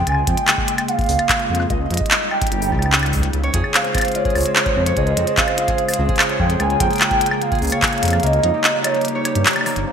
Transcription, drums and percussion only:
0.07 closed hi-hat, claves
0.09 claves
0.12 claves
0.15 claves
0.27 kick, closed hi-hat
0.37 closed hi-hat
0.48 clap, closed hi-hat, claves
0.58 kick
0.68 closed hi-hat
0.78 closed hi-hat, claves
0.88 closed hi-hat
0.99 kick, closed hi-hat
1.01 closed hi-hat
1.04 closed hi-hat
1.06 closed hi-hat, open hi-hat
1.19 closed hi-hat, claves
1.29 kick, clap, closed hi-hat
1.40 closed hi-hat
1.55 closed hi-hat
1.60 claves
1.70 kick, closed hi-hat
1.91 closed hi-hat
1.94 closed hi-hat
1.97 kick, closed hi-hat
2.06 closed hi-hat
2.11 clap, closed hi-hat
2.31 claves
2.42 kick, closed hi-hat
2.47 closed hi-hat
2.52 closed hi-hat
2.62 open hi-hat
2.72 kick, claves
2.79 closed hi-hat, claves
2.86 claves
2.93 clap, closed hi-hat
2.99 closed hi-hat
3.03 closed hi-hat, claves
3.06 closed hi-hat
3.13 kick, open hi-hat
3.16 kick
3.20 kick, closed hi-hat
3.33 closed hi-hat
3.44 closed hi-hat
3.54 kick, closed hi-hat
3.64 claves
3.74 clap, closed hi-hat
3.84 closed hi-hat
3.95 kick, closed hi-hat, claves
3.97 closed hi-hat, claves
4.00 closed hi-hat, claves
4.02 closed hi-hat, claves
4.08 closed hi-hat
4.12 closed hi-hat
4.15 closed hi-hat
4.25 kick, closed hi-hat
4.30 closed hi-hat
4.35 closed hi-hat, open hi-hat, claves
4.38 closed hi-hat, open hi-hat
4.40 open hi-hat
4.43 closed hi-hat, open hi-hat
4.56 clap, closed hi-hat
4.66 kick, closed hi-hat
4.86 closed hi-hat
4.97 kick, closed hi-hat
5.07 closed hi-hat
5.17 closed hi-hat
5.27 closed hi-hat
5.37 kick, clap, closed hi-hat
5.48 closed hi-hat, claves
5.58 closed hi-hat
5.68 kick, closed hi-hat
5.78 closed hi-hat
5.89 open hi-hat, claves
5.94 closed hi-hat
6.09 kick, closed hi-hat
6.16 clap, closed hi-hat
6.19 closed hi-hat, claves
6.23 closed hi-hat
6.29 closed hi-hat
6.40 kick
6.50 closed hi-hat
6.60 closed hi-hat, claves
6.70 closed hi-hat
6.80 kick, closed hi-hat
6.91 closed hi-hat
6.93 closed hi-hat
6.96 closed hi-hat
6.98 clap, closed hi-hat
7.01 closed hi-hat, claves
7.11 kick, closed hi-hat
7.21 closed hi-hat
7.26 closed hi-hat
7.31 claves
7.42 closed hi-hat
7.52 kick, closed hi-hat
7.55 closed hi-hat
7.59 closed hi-hat
7.62 closed hi-hat, open hi-hat
7.65 closed hi-hat, open hi-hat
7.67 closed hi-hat, open hi-hat
7.70 closed hi-hat, open hi-hat, claves
7.82 kick, clap, closed hi-hat
7.88 closed hi-hat
7.93 closed hi-hat
7.98 closed hi-hat
8.03 closed hi-hat
8.05 closed hi-hat
8.08 closed hi-hat
8.10 closed hi-hat, claves
8.20 closed hi-hat
8.23 closed hi-hat
8.27 closed hi-hat
8.33 closed hi-hat
8.44 closed hi-hat
8.64 clap, closed hi-hat
8.84 closed hi-hat, claves
8.87 claves
8.89 claves
8.92 closed hi-hat, claves
9.01 closed hi-hat
9.05 closed hi-hat
9.08 closed hi-hat
9.25 closed hi-hat, claves
9.35 closed hi-hat
9.46 clap, closed hi-hat
9.48 closed hi-hat
9.53 closed hi-hat
9.56 closed hi-hat, claves
9.61 claves
9.66 open hi-hat, claves
9.71 claves
9.76 closed hi-hat

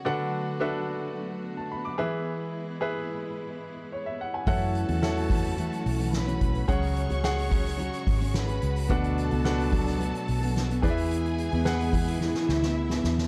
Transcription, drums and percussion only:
4.47 kick, open hi-hat
4.75 hi-hat pedal, open hi-hat
4.88 open hi-hat
5.03 snare, hi-hat pedal, open hi-hat
5.17 hi-hat pedal, open hi-hat
5.30 kick, hi-hat pedal, open hi-hat
5.44 hi-hat pedal, open hi-hat
5.58 hi-hat pedal, open hi-hat
5.72 hi-hat pedal, open hi-hat
5.86 hi-hat pedal, open hi-hat
5.99 hi-hat pedal, open hi-hat
6.13 snare, hi-hat pedal, open hi-hat
6.27 hi-hat pedal
6.41 kick, hi-hat pedal, open hi-hat
6.55 open hi-hat
6.68 kick, hi-hat pedal, open hi-hat
6.82 hi-hat pedal, open hi-hat
6.96 hi-hat pedal, open hi-hat
7.10 hi-hat pedal, open hi-hat
7.24 snare, hi-hat pedal, open hi-hat
7.38 hi-hat pedal, open hi-hat
7.51 kick, hi-hat pedal, open hi-hat
7.66 snare, hi-hat pedal, open hi-hat
7.79 hi-hat pedal, open hi-hat
7.93 hi-hat pedal, open hi-hat
8.07 kick, hi-hat pedal, open hi-hat
8.21 hi-hat pedal, open hi-hat
8.34 snare, hi-hat pedal, open hi-hat
8.48 hi-hat pedal, open hi-hat
8.62 hi-hat pedal, open hi-hat
8.76 hi-hat pedal, open hi-hat
8.90 kick, hi-hat pedal, open hi-hat
9.03 hi-hat pedal
9.18 hi-hat pedal, open hi-hat
9.31 open hi-hat
9.45 snare, hi-hat pedal, open hi-hat
9.59 hi-hat pedal, open hi-hat
9.72 kick, hi-hat pedal, open hi-hat
9.87 snare, hi-hat pedal, open hi-hat
10.01 hi-hat pedal, open hi-hat
10.14 hi-hat pedal, open hi-hat
10.28 hi-hat pedal, open hi-hat
10.42 hi-hat pedal, open hi-hat
10.56 snare, hi-hat pedal, open hi-hat
10.70 hi-hat pedal, open hi-hat
10.83 kick, hi-hat pedal, open hi-hat
10.97 hi-hat pedal, open hi-hat
11.11 hi-hat pedal, open hi-hat
11.25 hi-hat pedal
11.38 hi-hat pedal, open hi-hat
11.52 open hi-hat
11.66 snare, hi-hat pedal, open hi-hat
11.80 hi-hat pedal, open hi-hat
11.93 kick, hi-hat pedal, open hi-hat
12.07 hi-hat pedal, open hi-hat
12.21 snare
12.34 snare
12.49 snare
12.63 snare
12.90 snare
13.04 snare
13.18 snare

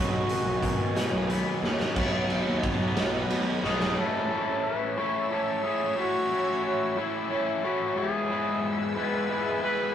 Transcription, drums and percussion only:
0.29 closed hi-hat
0.63 kick, closed hi-hat
0.96 snare, closed hi-hat
1.30 closed hi-hat
1.64 snare
1.80 snare
1.96 kick, crash
2.30 ride
2.63 kick, ride
2.97 snare, ride
3.30 ride
3.64 snare
3.80 snare

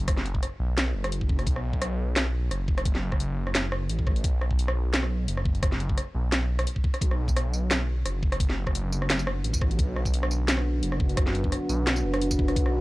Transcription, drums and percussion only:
0.08 kick, cross-stick, closed hi-hat
0.17 snare
0.26 closed hi-hat
0.35 kick
0.43 cross-stick, closed hi-hat
0.78 cross-stick, snare, closed hi-hat
1.04 cross-stick, closed hi-hat
1.12 closed hi-hat
1.21 kick
1.29 kick
1.39 cross-stick, closed hi-hat
1.47 kick, closed hi-hat
1.56 cross-stick
1.73 kick
1.82 cross-stick, closed hi-hat
2.16 cross-stick, snare, closed hi-hat
2.51 cross-stick, closed hi-hat
2.68 kick
2.78 cross-stick, closed hi-hat
2.85 kick, closed hi-hat
2.95 snare
3.12 kick, cross-stick
3.20 closed hi-hat
3.47 cross-stick
3.55 snare, closed hi-hat
3.72 cross-stick
3.90 closed hi-hat
3.99 kick
4.07 kick, cross-stick
4.16 closed hi-hat
4.24 kick, closed hi-hat
4.41 cross-stick
4.51 kick
4.59 closed hi-hat
4.68 cross-stick
4.94 snare, closed hi-hat
5.03 cross-stick
5.28 closed hi-hat
5.37 cross-stick
5.45 kick
5.55 closed hi-hat
5.63 kick, cross-stick, closed hi-hat
5.72 snare
5.80 closed hi-hat
5.89 kick
5.98 cross-stick, closed hi-hat
6.32 cross-stick, snare, closed hi-hat
6.59 cross-stick, closed hi-hat
6.67 closed hi-hat
6.76 kick
6.84 kick
6.94 cross-stick, closed hi-hat
7.01 kick, closed hi-hat
7.11 cross-stick
7.28 kick, tambourine
7.36 cross-stick, closed hi-hat
7.53 tambourine
7.71 cross-stick, snare, closed hi-hat, tambourine
8.06 cross-stick, closed hi-hat
8.23 kick
8.32 cross-stick, closed hi-hat
8.40 kick, closed hi-hat
8.50 snare
8.67 kick, cross-stick
8.75 closed hi-hat
8.92 tambourine
9.02 cross-stick
9.10 snare, closed hi-hat
9.19 tambourine
9.27 cross-stick
9.44 closed hi-hat
9.53 kick, tambourine
9.61 kick, cross-stick
9.71 closed hi-hat
9.79 kick, closed hi-hat
9.96 cross-stick
10.05 kick, tambourine
10.14 closed hi-hat
10.23 cross-stick
10.31 tambourine
10.48 snare, closed hi-hat, tambourine
10.57 cross-stick
10.83 closed hi-hat
10.92 cross-stick
11.00 kick
11.09 closed hi-hat
11.17 kick, cross-stick, closed hi-hat
11.27 snare
11.35 closed hi-hat
11.44 kick
11.52 cross-stick, closed hi-hat
11.69 tambourine
11.87 cross-stick, snare, closed hi-hat
11.96 tambourine
12.14 cross-stick, closed hi-hat
12.21 closed hi-hat
12.31 kick, tambourine
12.39 kick
12.48 cross-stick, closed hi-hat
12.56 kick, closed hi-hat
12.66 cross-stick

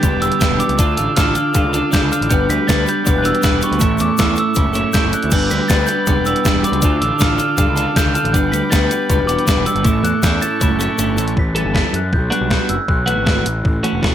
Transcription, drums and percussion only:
0.03 kick, closed hi-hat, shaker
0.22 closed hi-hat, shaker
0.32 closed hi-hat
0.41 kick, snare, closed hi-hat, shaker
0.60 closed hi-hat, shaker
0.69 closed hi-hat
0.79 kick, closed hi-hat, shaker
0.97 closed hi-hat, shaker
1.17 kick, snare, closed hi-hat, shaker
1.35 closed hi-hat, shaker
1.54 kick, closed hi-hat, shaker
1.74 closed hi-hat, shaker
1.92 kick, snare, closed hi-hat, shaker
2.12 closed hi-hat, shaker
2.22 closed hi-hat
2.31 kick, closed hi-hat, shaker
2.50 closed hi-hat, shaker
2.69 kick, snare, closed hi-hat, shaker
2.87 closed hi-hat, shaker
3.06 kick, closed hi-hat, shaker
3.25 closed hi-hat, shaker
3.35 closed hi-hat
3.43 kick, snare, closed hi-hat, shaker
3.62 closed hi-hat, shaker
3.73 closed hi-hat
3.80 kick, closed hi-hat, shaker
3.98 closed hi-hat, shaker
4.17 kick, snare, closed hi-hat, shaker
4.36 closed hi-hat, shaker
4.55 kick, closed hi-hat, shaker
4.73 closed hi-hat, shaker
4.93 kick, snare, closed hi-hat, shaker
5.13 closed hi-hat, shaker
5.22 closed hi-hat
5.31 kick, crash, shaker
5.50 closed hi-hat, shaker
5.69 kick, snare, closed hi-hat, shaker
5.87 closed hi-hat, shaker
6.07 kick, closed hi-hat, shaker
6.25 closed hi-hat, shaker
6.36 closed hi-hat
6.45 kick, snare, closed hi-hat, shaker
6.64 closed hi-hat, shaker
6.73 closed hi-hat
6.82 kick, closed hi-hat, shaker
7.02 closed hi-hat
7.19 kick, snare, closed hi-hat, shaker
7.39 closed hi-hat, shaker
7.57 kick, closed hi-hat, shaker
7.76 closed hi-hat, shaker
7.96 kick, snare, closed hi-hat, shaker
8.15 closed hi-hat, shaker
8.25 closed hi-hat
8.34 kick, closed hi-hat, shaker
8.53 closed hi-hat, shaker
8.72 kick, snare, closed hi-hat, shaker
8.91 closed hi-hat, shaker
9.10 kick, closed hi-hat, shaker
9.29 closed hi-hat, shaker
9.39 closed hi-hat
9.47 kick, snare, closed hi-hat, shaker
9.66 closed hi-hat, shaker
9.76 closed hi-hat
9.85 kick, closed hi-hat, shaker
10.05 closed hi-hat, shaker
10.23 kick, snare, closed hi-hat, shaker
10.42 closed hi-hat, shaker
10.61 kick, closed hi-hat, shaker
10.80 closed hi-hat, shaker
10.98 closed hi-hat, shaker
11.17 closed hi-hat, shaker
11.28 closed hi-hat
11.37 kick
11.56 closed hi-hat
11.75 kick, snare
11.94 closed hi-hat
12.13 kick
12.32 closed hi-hat
12.51 kick, snare
12.69 closed hi-hat
12.88 kick
13.08 closed hi-hat
13.27 kick, snare
13.46 closed hi-hat
13.65 kick
13.84 closed hi-hat
14.03 kick, snare

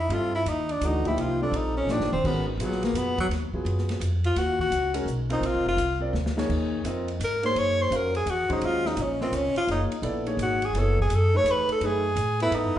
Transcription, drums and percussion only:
0.10 ride
0.46 hi-hat pedal, ride
0.69 ride
0.81 hi-hat pedal, ride
1.05 kick, ride
1.18 ride
1.54 ride
1.89 snare, hi-hat pedal
2.01 snare
2.12 mid tom
2.24 kick, crash
2.60 hi-hat pedal, ride
2.72 snare
2.83 snare, ride
2.95 hi-hat pedal, ride
3.18 kick, ride
3.31 snare, ride
3.54 kick
3.66 ride
3.78 snare
3.89 snare, ride
4.01 hi-hat pedal, ride
4.24 ride
4.36 snare, ride
4.60 kick
4.72 hi-hat pedal, ride
4.94 ride
5.07 hi-hat pedal
5.30 ride
5.43 ride
5.78 hi-hat pedal, ride
6.14 snare
6.26 snare
6.38 snare
6.50 kick, crash
6.85 hi-hat pedal, ride
7.08 ride
7.21 hi-hat pedal, ride
7.43 ride
7.56 ride
7.92 hi-hat pedal, ride
8.15 ride
8.27 hi-hat pedal, ride
8.50 kick, ride
8.61 ride
8.86 snare
8.97 hi-hat pedal, ride
9.21 snare
9.33 hi-hat pedal, ride
9.56 ride
9.68 ride
9.92 ride
10.03 ride
10.26 ride
10.39 hi-hat pedal, ride
10.62 ride
10.75 snare, ride
10.98 kick
11.10 hi-hat pedal, ride
11.46 hi-hat pedal, ride
11.69 ride
11.81 ride
12.16 hi-hat pedal, ride
12.40 ride
12.52 ride

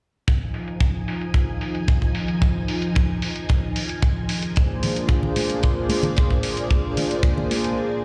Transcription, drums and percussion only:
0.28 kick, closed hi-hat
0.54 open hi-hat
0.68 closed hi-hat
0.81 kick, closed hi-hat
1.08 open hi-hat
1.21 closed hi-hat
1.34 kick, closed hi-hat
1.61 open hi-hat
1.75 closed hi-hat
1.88 kick, closed hi-hat
2.02 kick
2.15 open hi-hat
2.28 closed hi-hat
2.42 kick, closed hi-hat
2.68 open hi-hat
2.82 closed hi-hat
2.95 kick, closed hi-hat
3.22 open hi-hat
3.36 closed hi-hat
3.49 kick, closed hi-hat
3.76 open hi-hat
3.89 closed hi-hat
4.02 kick, closed hi-hat
4.29 open hi-hat
4.42 closed hi-hat
4.56 kick, closed hi-hat
4.83 open hi-hat, low conga
4.96 closed hi-hat
5.09 kick, closed hi-hat
5.23 low conga
5.36 open hi-hat, high conga
5.50 closed hi-hat
5.63 kick, closed hi-hat
5.89 open hi-hat, high conga
6.03 closed hi-hat, low conga
6.17 kick, closed hi-hat
6.31 kick
6.43 open hi-hat
6.57 closed hi-hat
6.70 kick, closed hi-hat
6.97 open hi-hat, high conga, low conga
7.11 closed hi-hat
7.23 kick, closed hi-hat
7.38 low conga
7.51 open hi-hat, high conga
7.64 closed hi-hat

